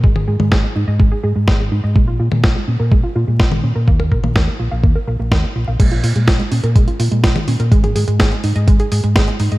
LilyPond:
<<
  \new Staff \with { instrumentName = "Synth arpeggio sound" } { \time 4/4 \key bes \minor \tempo 4 = 125 aes16 aes'16 aes'16 aes16 aes'16 aes16 ees'16 ees''16 aes16 aes'16 aes'16 aes16 aes'16 aes16 ees'16 ees''16 | aes16 f'16 f'16 aes16 f'16 aes16 des'16 bes'16 aes16 f'16 f'16 aes16 f'16 aes16 des'16 bes'16 | bes16 bes'16 bes'16 bes16 bes'16 bes16 f'16 f''16 bes16 bes'16 bes'16 bes16 bes'16 bes16 f'16 f''16 | aes16 f'16 f'16 aes16 f'16 aes16 des'16 bes'16 aes16 f'16 f'16 aes16 f'16 aes16 des'16 bes'16 |
aes16 aes'16 aes'16 aes16 aes'16 aes16 ees'16 ees''16 aes16 aes'16 aes'16 aes16 aes'16 aes16 ees'16 ees''16 | }
  \new Staff \with { instrumentName = "Fingered electric bass" } { \clef bass \time 4/4 \key bes \minor aes,,8 aes,16 aes,16 aes,,16 r16 aes,16 aes,16 aes,,16 r16 aes,16 aes,16 aes,,8 aes,16 aes,16 | bes,,8 bes,16 bes,16 bes,,16 r16 bes,16 bes,16 bes,,16 r16 bes,16 bes,16 bes,,8 bes,16 bes,16 | ees,8 bes,,16 bes,,16 ees,16 r16 bes,,16 bes,,16 ees,16 r16 bes,,16 bes,,16 ees,16 r16 bes,,16 bes,,16 | bes,,8 bes,16 bes,16 bes,,16 r16 bes,16 bes,16 bes,,16 r16 bes,16 bes,16 bes,,16 r16 bes,16 bes,16 |
aes,,8 aes,16 aes,16 aes,,16 r16 aes,16 aes,16 aes,,16 r16 aes,16 aes,16 aes,,16 r16 aes,16 aes,16 | }
  \new DrumStaff \with { instrumentName = "Drums" } \drummode { \time 4/4 bd16 tommh8 tommh16 <bd sn>4 bd4 <bd sn>4 | bd8. tommh16 <bd sn>4 bd4 <bd sn>16 tommh8. | bd16 tommh16 bd16 tommh16 <bd sn>4 bd4 <bd sn>4 | <cymc hh bd>16 hh16 hho16 hh16 <hh bd sn>16 hh16 hho16 hh16 <hh bd>16 hh16 hho16 hh16 <hh bd sn>16 <hh tommh>16 hho16 hh16 |
<hh bd>16 <hh tommh>16 hho16 hh16 <hh bd sn>16 hh16 hho16 hh16 <hh bd>16 hh16 hho16 hh16 <hh bd sn>16 hh16 hho16 hh16 | }
>>